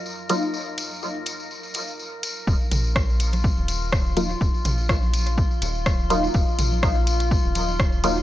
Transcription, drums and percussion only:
0.06 tambourine medium
0.29 closed hi-hat medium
0.29 tambourine medium
0.42 tambourine soft
0.54 tambourine medium
0.78 closed hi-hat medium
0.78 tambourine medium
0.91 tambourine soft
1.03 tambourine medium
1.26 closed hi-hat medium
1.26 tambourine medium
1.40 tambourine soft
1.51 tambourine soft
1.63 tambourine soft
1.74 closed hi-hat medium
1.74 tambourine loud
1.88 tambourine soft
1.99 tambourine soft
2.23 closed hi-hat medium
2.23 tambourine medium
2.37 tambourine soft
2.47 kick loud
2.47 tambourine medium
2.47 high conga soft
2.61 tambourine soft
2.71 closed hi-hat medium
2.71 mid tom medium
2.71 tambourine medium
2.84 tambourine soft
2.96 kick loud
2.96 cross-stick medium
2.96 tambourine soft
3.10 tambourine soft
3.20 closed hi-hat medium
3.20 tambourine medium
3.33 closed hi-hat soft
3.33 tambourine soft
3.33 high conga soft
3.44 kick loud
3.44 tambourine soft
3.57 tambourine soft
3.68 closed hi-hat medium
3.68 tambourine medium
3.82 tambourine soft
3.92 kick loud
3.92 cross-stick medium
3.92 tambourine soft
4.06 tambourine soft
4.17 closed hi-hat medium
4.17 tambourine medium
4.17 high conga soft
4.30 tambourine soft
4.41 kick loud
4.41 tambourine medium
4.54 tambourine soft
4.65 closed hi-hat medium
4.65 mid tom loud
4.65 tambourine medium
4.78 tambourine soft
4.89 kick loud
4.89 cross-stick medium
4.89 tambourine medium
5.03 tambourine soft
5.03 high conga soft
5.14 closed hi-hat medium
5.14 tambourine medium
5.26 closed hi-hat soft
5.26 tambourine soft
5.38 kick loud
5.38 tambourine medium
5.51 tambourine soft
5.62 closed hi-hat medium
5.62 tambourine medium
5.75 tambourine soft
5.86 kick loud
5.86 cross-stick medium
5.86 tambourine medium
5.86 high conga soft
5.99 tambourine soft
6.10 closed hi-hat medium
6.10 tambourine medium
6.24 tambourine soft
6.34 kick loud
6.34 tambourine medium
6.48 tambourine soft
6.59 closed hi-hat medium
6.59 mid tom medium
6.59 tambourine loud
6.72 tambourine soft
6.72 high conga soft
6.83 kick loud
6.83 cross-stick medium
6.83 tambourine medium
6.95 tambourine soft
7.07 closed hi-hat medium
7.07 tambourine medium
7.20 closed hi-hat soft
7.20 tambourine soft
7.31 kick loud
7.31 tambourine medium
7.44 tambourine soft
7.55 closed hi-hat medium
7.55 tambourine medium
7.55 high conga soft
7.68 tambourine soft
7.80 kick loud
7.80 cross-stick medium
7.80 tambourine medium
7.92 tambourine soft
8.04 closed hi-hat medium
8.04 tambourine medium
8.17 tambourine soft

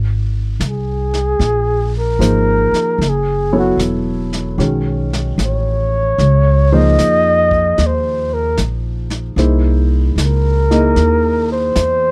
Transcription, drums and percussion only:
0.60 snare soft
0.60 hi-hat pedal soft
1.14 snare soft
1.40 brush sweep soft
1.40 snare soft
2.21 snare soft
2.21 hi-hat pedal soft
2.74 snare soft
3.01 brush sweep soft
3.01 snare soft
3.79 snare soft
3.79 hi-hat pedal soft
4.33 snare soft
4.60 brush sweep soft
4.60 snare soft
5.13 snare soft
5.39 snare soft
5.39 hi-hat pedal soft
6.19 brush sweep soft
6.19 snare soft
6.99 snare soft
6.99 hi-hat pedal soft
7.51 kick soft
7.78 brush sweep soft
7.78 snare soft
8.57 snare soft
8.57 hi-hat pedal soft
9.10 snare soft
9.38 brush sweep soft
9.38 snare soft
10.18 snare soft
10.18 hi-hat pedal soft
10.71 snare soft
10.96 brush sweep soft
10.96 snare soft
11.75 snare soft
11.75 hi-hat pedal medium

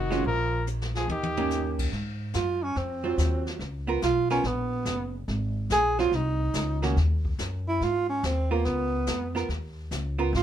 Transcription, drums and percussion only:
0.11 snare soft
0.25 brush sweep soft
0.67 hi-hat pedal medium
0.82 snare medium
0.95 snare medium
1.09 high tom medium
1.23 high tom medium
1.37 floor tom medium
1.50 snare soft
1.50 hi-hat pedal medium
1.79 kick medium
1.79 crash medium
1.93 brush sweep soft
1.93 snare soft
2.33 snare medium
2.33 hi-hat pedal medium
2.76 brush sweep soft
2.76 snare soft
3.18 snare medium
3.18 hi-hat pedal medium
3.47 snare soft
3.60 brush sweep soft
3.60 snare soft
4.02 snare medium
4.02 hi-hat pedal soft
4.30 snare soft
4.44 brush sweep soft
4.44 snare soft
4.85 snare medium
4.85 hi-hat pedal medium
5.28 brush sweep medium
5.28 snare soft
5.70 snare medium
5.70 hi-hat pedal medium
5.98 snare soft
6.12 brush sweep soft
6.12 snare soft
6.54 snare medium
6.54 hi-hat pedal medium
6.82 snare soft
6.97 brush sweep soft
6.97 snare soft
7.25 kick medium
7.39 snare medium
7.39 hi-hat pedal medium
7.81 brush sweep soft
7.81 snare soft
8.23 snare medium
8.23 hi-hat pedal soft
8.65 brush sweep soft
8.65 snare soft
9.07 snare medium
9.07 hi-hat pedal medium
9.36 snare soft
9.49 brush sweep soft
9.49 snare soft
9.91 snare medium
9.91 hi-hat pedal medium
10.34 brush sweep medium
10.34 snare soft

